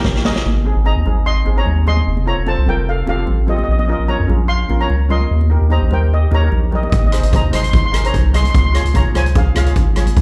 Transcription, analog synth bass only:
0.00 0.32 A#1 medium
0.46 0.72 G#1 loud
0.76 0.94 G#1 loud
0.97 1.05 D#2 medium
1.06 1.42 G#1 loud
1.47 1.64 G#1 medium
1.67 2.02 D#2 medium
2.07 2.34 F1 loud
2.38 2.56 F1 loud
2.58 2.66 C2 medium
2.67 3.03 F1 loud
3.07 3.25 F1 loud
3.28 3.64 A1 medium
3.68 3.96 A#1 loud
3.99 4.17 A#1 loud
4.20 4.28 F2 medium
4.29 4.65 A#1 medium
4.70 4.88 A#1 medium
4.90 5.26 C#2 medium
5.31 5.58 D#2 loud
5.62 5.79 D#2 loud
5.82 5.90 A#1 medium
5.92 6.27 D#2 medium
6.32 6.49 D#2 medium
6.52 6.88 A#1 medium
6.92 7.20 G#1 loud
7.23 7.41 G#1 loud
7.44 7.52 D#2 medium
7.53 7.89 G#1 medium
7.94 8.11 G#1 loud
8.14 8.50 C2 medium
8.54 8.82 C#2 loud
8.85 9.03 C#2 loud
9.06 9.14 G#1 medium
9.16 9.51 C#2 medium
9.56 9.74 C#2 loud
9.76 10.12 G#1 medium
10.17 10.21 D#2 loud

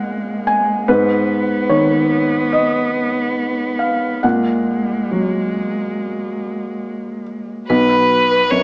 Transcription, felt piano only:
0.00 0.84 A#1 soft
0.00 0.88 A#2 soft
0.00 0.90 F5 medium
0.00 0.42 F#5 medium
0.47 0.85 G#5 medium
0.88 4.20 G#2 medium
0.88 1.66 B4 medium
1.69 4.23 D#3 soft
1.69 2.49 C#5 medium
2.53 3.76 D#5 medium
3.79 4.20 F5 soft
4.23 7.65 A#2 soft
4.23 7.22 F#5 medium
5.12 7.69 F#3 soft
7.70 8.63 B1 soft
8.51 8.63 F#2 soft

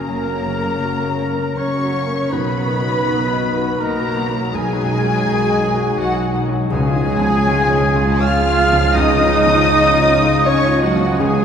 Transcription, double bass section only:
0.09 0.75 F#1 medium
0.82 1.49 F#1 medium
1.58 2.23 F#1 medium
2.31 2.97 B1 medium
3.06 3.71 B1 medium
3.80 4.45 B1 medium
4.53 5.18 B1 medium
5.27 5.91 B1 medium
5.99 6.63 B1 medium
6.71 11.17 C#2 loud
11.19 11.45 C#2 loud

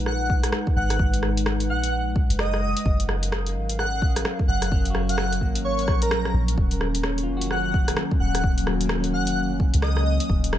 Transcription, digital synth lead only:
0.07 0.31 F#5 medium
0.76 1.01 F#5 medium
1.70 1.94 F#5 medium
2.40 2.61 D#5 medium
2.62 2.71 D#5 medium
2.76 2.82 D#5 medium
3.79 4.03 F#5 medium
4.48 4.73 F#5 medium
5.09 5.33 F#5 medium
5.65 5.99 C#5 medium
6.02 6.35 A#4 medium
7.51 7.75 F#5 medium
8.20 8.45 F#5 medium
9.14 9.38 F#5 medium
9.82 10.04 D#5 medium
10.06 10.15 D#5 medium
10.19 10.26 D#5 medium

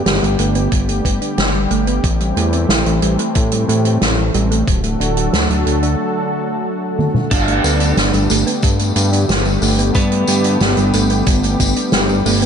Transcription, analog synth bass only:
0.06 0.21 G1 loud
0.23 0.37 G1 medium
0.39 0.68 G1 medium
0.72 1.01 G1 medium
1.05 1.20 G1 medium
1.38 1.67 G1 loud
1.71 2.00 G1 medium
2.04 2.33 A1 loud
2.37 2.66 E2 medium
2.70 2.84 A1 medium
2.86 3.01 A1 loud
3.03 3.17 A1 medium
3.36 3.65 A2 medium
3.69 3.98 A2 loud
4.02 4.31 A1 medium
4.35 4.64 A1 loud
4.68 4.97 D1 medium
5.00 5.30 D1 medium
5.33 5.48 D2 loud
5.50 5.65 D2 medium
5.66 5.96 D2 medium
7.31 7.61 G1 loud
7.64 7.94 D2 medium
7.97 8.12 G1 medium
8.14 8.28 G1 loud
8.30 8.45 G1 medium
8.63 8.93 G2 medium
8.96 9.26 G2 loud
9.29 9.59 G1 medium
9.62 9.91 G1 loud
9.95 10.24 G2 loud
10.28 10.57 G2 medium
10.61 10.76 G1 loud
10.78 10.92 G1 medium
10.94 11.23 G1 medium
11.27 11.56 G1 loud
11.60 11.75 G1 medium
11.93 12.22 G1 loud
12.26 12.46 G1 medium

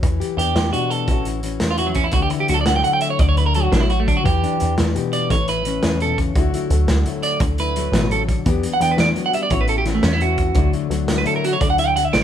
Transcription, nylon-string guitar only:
0.00 1.09 E3 medium
0.00 0.38 E4 medium
0.20 1.06 G4 medium
0.38 1.07 B3 medium
0.38 0.72 D4 medium
0.72 1.08 B2 medium
0.72 1.06 D4 medium
1.09 1.43 E3 medium
1.09 1.43 C#4 medium
1.09 1.27 E4 medium
1.09 4.27 F#4 medium
1.09 muted nylon-string guitar stroke medium
1.28 1.79 E4 medium
1.44 2.50 E3 medium
1.44 2.13 C#4 medium
1.79 2.12 A2 medium
1.79 2.18 E4 medium
2.15 3.20 D3 medium
2.33 2.87 E4 medium
2.51 3.55 F#3 medium
2.51 3.56 A3 medium
2.87 3.21 A2 medium
2.87 3.39 E4 medium
3.22 3.73 D3 medium
3.39 4.43 E4 medium
3.56 4.23 F#3 medium
3.56 4.27 A3 medium
3.73 3.88 B2 medium
3.88 muted nylon-string guitar stroke medium
4.07 4.25 D3 medium
4.24 5.66 E3 medium
4.44 4.59 D4 medium
4.61 5.29 D4 medium
4.95 5.30 B2 medium
4.95 5.28 G4 medium
5.29 5.83 A2 medium
5.49 6.39 E4 medium
5.66 6.37 E3 medium
5.66 6.34 C#4 medium
5.85 6.02 A2 medium
6.01 6.18 B2 medium
6.18 6.36 C#3 medium
6.37 7.41 D3 medium
6.37 6.71 F#3 medium
6.37 6.72 A3 medium
6.37 6.54 E4 medium
6.37 8.48 F#4 medium
6.55 7.07 E4 medium
6.72 7.75 F#3 medium
6.72 7.76 A3 medium
7.08 7.42 A2 medium
7.08 7.60 E4 medium
7.42 7.92 D3 medium
7.60 8.47 E4 medium
7.77 8.45 F#3 medium
7.77 8.46 A3 medium
7.93 8.11 B2 medium
8.12 8.29 C#3 medium
8.30 8.47 D3 medium
8.45 8.96 E3 medium
8.45 8.79 B3 medium
8.45 8.80 D4 medium
8.45 8.65 G4 medium
8.80 9.49 B3 medium
8.80 9.49 D4 medium
8.97 9.15 E3 medium
9.16 9.33 F#3 medium
9.33 9.50 G3 medium
9.49 10.20 A2 medium
9.49 9.85 C#4 medium
9.49 9.68 E4 medium
9.49 12.24 F#4 medium
9.49 muted nylon-string guitar stroke medium
9.68 10.22 E4 medium
9.86 10.55 E3 medium
9.86 10.54 C#4 medium
10.21 10.54 A2 medium
10.21 10.57 E4 medium
10.55 11.59 D3 medium
10.55 10.90 F#3 medium
10.55 10.90 A3 medium
10.55 10.73 E4 medium
10.73 11.25 E4 medium
10.91 11.96 F#3 medium
10.91 11.96 A3 medium
11.24 11.60 A2 medium
11.24 11.79 E4 medium
11.60 12.24 D3 medium
11.79 12.24 E4 medium
11.98 muted nylon-string guitar stroke medium

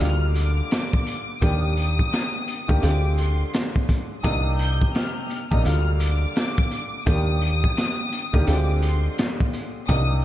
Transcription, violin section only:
0.02 0.33 F6 medium
0.36 1.38 D6 medium
1.42 2.79 D#6 loud
2.83 3.15 D6 medium
3.19 3.50 C6 medium
4.24 4.56 D#6 loud
4.59 4.91 G6 medium
4.95 5.48 F6 medium
5.53 5.65 D#6 medium
5.66 5.97 F6 medium
6.01 7.03 D6 loud
7.07 8.44 D#6 loud
8.49 8.80 D6 medium
8.82 9.14 C6 medium
9.89 10.21 D#6 loud

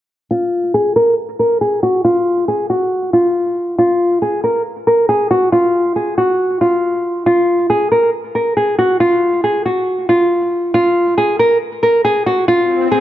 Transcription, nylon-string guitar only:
0.31 0.72 F4 medium
0.74 0.92 G#4 medium
0.96 1.14 A#4 medium
1.39 1.57 A#4 medium
1.61 1.79 G#4 medium
1.83 2.01 F#4 medium
2.05 2.45 F4 loud
2.48 2.66 G#4 medium
2.70 3.11 F#4 medium
3.13 3.75 F4 medium
3.78 4.19 F4 loud
4.22 4.40 G#4 medium
4.44 4.61 A#4 medium
4.87 5.05 A#4 medium
5.09 5.27 G#4 medium
5.31 5.48 F#4 medium
5.52 5.93 F4 loud
5.96 6.14 G#4 medium
6.18 6.59 F#4 medium
6.61 7.22 F4 medium
7.26 7.67 F4 medium
7.70 7.87 G#4 medium
7.92 8.09 A#4 medium
8.35 8.53 A#4 medium
8.57 8.74 G#4 medium
8.79 8.96 F#4 medium
9.00 9.41 F4 loud
9.44 9.61 G#4 medium
9.66 10.06 F#4 medium
10.09 10.70 F4 medium
10.74 11.15 F4 medium
11.18 11.35 G#4 medium
11.39 11.57 A#4 medium
11.83 12.00 A#4 medium
12.05 12.22 G#4 medium
12.26 12.44 F#4 medium
12.48 12.89 F4 loud
12.92 13.00 G#4 medium

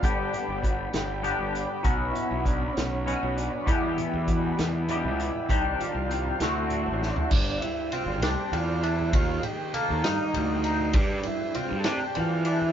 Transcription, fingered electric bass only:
0.03 0.28 G1 medium
0.48 0.85 G1 medium
0.94 1.31 G1 medium
1.39 1.64 G1 medium
1.84 2.09 B1 medium
2.31 2.67 B1 medium
2.77 3.13 B1 medium
3.23 3.47 B1 medium
3.68 3.92 E2 medium
4.14 4.50 E2 medium
4.59 5.05 E2 loud
5.04 5.28 C#2 medium
5.49 5.73 C2 medium
5.95 6.31 C2 medium
6.40 6.88 D2 medium
6.86 7.10 A1 medium
7.32 7.56 G1 medium
8.06 8.22 G1 medium
8.22 8.34 C2 medium
8.52 9.13 E2 medium
9.13 9.37 D#2 loud
9.90 10.06 D#2 medium
10.06 10.18 G2 medium
10.36 10.94 D2 medium
10.94 11.18 G2 loud
11.71 11.86 G2 medium
11.86 11.98 C3 medium
12.17 12.72 E3 medium

